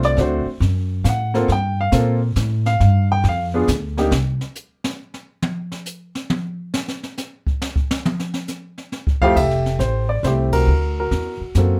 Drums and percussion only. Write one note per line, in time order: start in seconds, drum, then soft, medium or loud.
0.03 snare soft
0.17 brush sweep medium
0.17 kick soft
0.17 snare soft
0.61 kick soft
0.61 snare soft
1.05 kick soft
1.05 snare medium
1.05 hi-hat pedal medium
1.34 snare soft
1.49 brush sweep soft
1.49 kick soft
1.49 snare soft
1.92 snare medium
1.92 hi-hat pedal medium
2.36 kick soft
2.36 snare medium
2.36 hi-hat pedal medium
2.66 snare soft
2.80 brush sweep soft
2.80 kick soft
2.80 snare soft
3.24 kick soft
3.24 snare soft
3.68 kick soft
3.68 snare medium
3.68 hi-hat pedal medium
3.98 snare soft
4.12 snare loud
4.41 snare soft
4.55 hi-hat pedal medium
4.84 snare loud
5.14 snare soft
5.42 mid tom loud
5.72 snare soft
5.86 hi-hat pedal medium
6.15 snare medium
6.30 mid tom loud
6.74 snare loud
6.88 snare medium
7.03 snare soft
7.17 snare soft
7.17 hi-hat pedal medium
7.47 kick medium
7.62 snare loud
7.76 kick medium
7.91 snare loud
8.05 mid tom loud
8.20 snare medium
8.34 snare soft
8.48 snare soft
8.48 hi-hat pedal medium
8.78 snare soft
8.92 snare medium
9.07 kick medium
9.21 kick medium
9.36 brush sweep soft
9.36 kick medium
9.36 snare soft
9.36 crash medium
9.51 snare soft
9.66 snare soft
9.80 kick soft
9.80 snare medium
9.80 hi-hat pedal medium
10.24 kick soft
10.24 snare medium
10.24 hi-hat pedal medium
10.52 kick medium
10.52 ride medium
10.68 brush sweep soft
11.11 kick soft
11.11 snare soft
11.55 kick soft
11.55 snare medium
11.55 hi-hat pedal medium